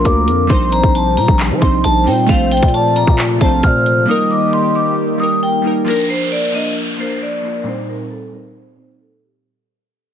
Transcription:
0.00 0.48 D3 medium
0.00 0.48 F3 medium
0.00 0.52 F3 loud
0.00 0.46 A#3 medium
0.00 0.52 A#3 medium
0.00 0.51 D4 medium
0.00 0.48 F4 medium
0.00 0.46 A#4 loud
0.00 0.51 A#4 loud
0.05 0.29 D2 loud
0.05 0.47 D6 medium
0.05 kick medium
0.05 closed hi-hat medium
0.28 0.49 F2 loud
0.28 closed hi-hat medium
0.47 0.82 A#1 loud
0.47 4.05 C3 medium
0.47 2.27 D#3 medium
0.47 1.07 G3 loud
0.47 2.27 G3 medium
0.47 1.08 C4 medium
0.47 2.27 D#4 medium
0.47 1.09 D#4 loud
0.47 1.36 C5 loud
0.47 0.69 C6 medium
0.47 kick loud
0.47 closed hi-hat medium
0.52 1.10 C5 loud
0.72 0.91 A#5 medium
0.72 closed hi-hat medium
0.83 1.19 A#1 loud
0.83 kick loud
0.95 1.14 A5 medium
0.95 closed hi-hat medium
1.17 1.28 A#2 loud
1.17 1.36 A#5 medium
1.17 open hi-hat medium
1.28 1.52 A#1 loud
1.28 kick loud
1.39 clap loud
1.39 closed hi-hat medium
1.51 1.61 F3 loud
1.59 1.83 A#1 loud
1.59 1.90 G3 medium
1.59 1.91 C4 medium
1.59 1.92 D#4 medium
1.59 1.81 C6 medium
1.59 kick medium
1.59 closed hi-hat medium
1.65 1.93 C5 medium
1.84 2.08 A#1 loud
1.84 2.03 A5 medium
1.84 closed hi-hat medium
2.04 2.28 A#2 loud
2.04 2.20 G3 medium
2.04 2.21 C4 medium
2.04 2.22 D#4 medium
2.04 2.26 G5 medium
2.04 open hi-hat medium
2.09 2.23 C5 loud
2.26 2.61 A#1 loud
2.26 4.06 F3 medium
2.26 2.50 A3 loud
2.26 4.06 A3 medium
2.26 2.51 C4 medium
2.26 4.06 F4 medium
2.26 2.52 F4 loud
2.26 2.71 C5 loud
2.26 2.48 F5 medium
2.26 kick loud
2.26 closed hi-hat medium
2.32 2.52 C5 loud
2.51 2.71 G5 medium
2.51 closed hi-hat medium
2.57 3.13 A3 medium
2.57 closed hi-hat medium
2.62 3.06 A#2 loud
2.62 3.14 C4 medium
2.62 3.15 F4 medium
2.62 3.16 C5 medium
2.62 kick loud
2.62 closed hi-hat medium
2.68 closed hi-hat soft
2.74 3.37 D5 medium
2.74 2.93 A5 medium
2.74 closed hi-hat medium
2.96 3.15 A#5 medium
2.96 closed hi-hat medium
3.07 3.40 A#2 loud
3.07 kick loud
3.18 clap loud
3.18 closed hi-hat medium
3.39 3.62 A#1 loud
3.39 3.84 A3 medium
3.39 3.85 C4 medium
3.39 3.86 F4 medium
3.39 4.04 C5 medium
3.39 3.60 A5 medium
3.39 kick medium
3.39 closed hi-hat medium
3.44 3.87 C5 medium
3.63 4.06 A#2 loud
3.63 4.05 F6 medium
3.63 kick medium
3.63 closed hi-hat medium
3.86 closed hi-hat medium
4.05 5.86 D#3 medium
4.05 4.66 G3 loud
4.05 5.86 G3 medium
4.05 4.67 A#3 loud
4.05 5.86 A#3 medium
4.05 4.67 D#4 medium
4.05 5.86 G4 medium
4.05 4.94 D#5 loud
4.05 4.27 D#6 medium
4.11 4.68 A#4 loud
4.31 4.50 D6 medium
4.53 4.72 C6 medium
4.75 4.94 D6 medium
5.18 5.48 G3 medium
5.18 5.49 A#3 medium
5.18 5.50 D#4 medium
5.18 5.39 D#6 medium
5.23 5.51 A#4 medium
5.43 5.62 G5 medium
5.62 5.78 G3 medium
5.62 5.79 A#3 medium
5.62 5.80 D#4 medium
5.67 5.81 A#4 medium
5.85 6.30 F3 loud
5.85 6.31 A#3 loud
5.85 6.32 D4 medium
5.85 6.07 A#4 medium
5.85 downlifter medium
5.90 6.33 A#4 loud
6.10 6.29 C5 medium
6.32 6.51 D5 medium
6.52 6.83 F3 medium
6.52 6.83 A#3 medium
6.52 6.84 D4 medium
6.52 6.74 D#5 medium
6.57 6.85 A#4 medium
6.97 7.27 F3 medium
6.97 7.28 A#3 medium
6.97 7.29 D4 medium
6.97 7.19 C5 medium
7.02 7.30 A#4 medium
7.22 7.64 D5 medium
7.41 7.57 F3 medium
7.41 7.58 A#3 medium
7.41 7.59 D4 medium
7.47 7.60 F4 medium
7.63 8.09 A#2 loud
7.63 8.10 G3 medium
7.63 8.10 C4 loud
7.63 7.86 C5 medium
7.67 8.11 D#4 medium
7.67 8.12 C5 loud
7.89 8.08 A#4 medium
8.11 8.30 A4 medium
8.31 8.62 A#2 medium
8.31 8.62 G3 medium
8.31 8.63 C4 medium
8.31 8.53 A#4 medium
8.35 8.64 D#4 medium
8.35 8.64 C5 medium
8.76 9.21 A#2 medium
8.76 9.22 G3 medium
8.76 9.22 C4 medium
8.76 8.97 C5 medium
8.80 9.23 D#4 medium
8.80 9.24 C5 medium
9.01 9.20 A4 medium

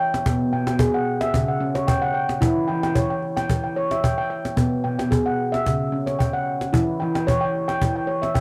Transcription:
0.00 0.40 G5 medium
0.14 cajon slap soft
0.26 0.47 B2 loud
0.26 0.53 B3 medium
0.26 cajon bass medium
0.53 1.17 B2 medium
0.53 0.66 G5 medium
0.67 1.07 G5 medium
0.67 cajon slap soft
0.79 1.07 G#4 medium
0.79 cajon bass medium
0.94 1.34 F#5 medium
1.21 1.34 E5 medium
1.21 cajon slap soft
1.34 2.19 C#3 medium
1.34 cajon bass medium
1.48 1.88 F#5 soft
1.60 1.88 C#4 medium
1.75 2.15 C#5 medium
1.75 cajon slap soft
1.88 2.13 G5 medium
1.88 cajon bass medium
2.02 2.29 F#5 medium
2.14 2.56 G5 medium
2.29 cajon slap soft
2.41 2.63 E3 medium
2.41 2.68 E4 medium
2.41 cajon bass medium
2.68 3.33 E3 medium
2.68 2.82 G5 medium
2.83 3.09 G5 medium
2.83 cajon slap soft
2.95 3.23 C#5 medium
2.95 cajon bass soft
3.10 3.35 G5 medium
3.10 cajon slap soft
3.22 cajon slap soft
3.36 3.62 G5 medium
3.36 cajon slap soft
3.49 4.35 E3 medium
3.49 cajon bass soft
3.64 4.02 G5 soft
3.76 4.04 C#5 medium
3.91 4.31 E5 medium
3.91 cajon slap soft
4.04 4.17 G5 medium
4.04 cajon bass medium
4.18 4.29 G5 medium
4.30 4.72 G5 medium
4.45 cajon slap soft
4.57 4.80 B2 medium
4.57 4.84 B3 medium
4.57 cajon bass soft
4.84 5.48 B2 medium
4.84 4.98 G5 soft
4.99 5.38 G5 medium
4.99 cajon slap soft
5.11 5.38 G#4 medium
5.11 cajon bass soft
5.26 5.66 F#5 medium
5.52 5.65 E5 medium
5.52 cajon slap soft
5.66 6.51 C#3 medium
5.66 cajon bass soft
5.92 6.20 C#4 medium
6.07 6.46 C#5 soft
6.07 cajon slap soft
6.19 6.61 G5 medium
6.19 cajon bass soft
6.33 6.61 F#5 medium
6.61 cajon slap soft
6.73 6.95 E3 loud
6.73 7.00 E4 medium
6.73 cajon bass medium
7.00 7.65 E3 medium
7.00 7.14 G5 medium
7.15 7.40 G5 medium
7.15 cajon slap soft
7.27 7.54 C#5 medium
7.27 cajon bass soft
7.41 7.67 G5 medium
7.68 7.95 G5 medium
7.68 cajon slap soft
7.82 8.40 E3 medium
7.82 cajon bass soft
7.96 8.33 G5 soft
8.07 8.35 C#5 medium
8.22 8.40 E5 medium
8.22 cajon slap soft
8.34 8.40 G5 medium
8.34 cajon bass soft

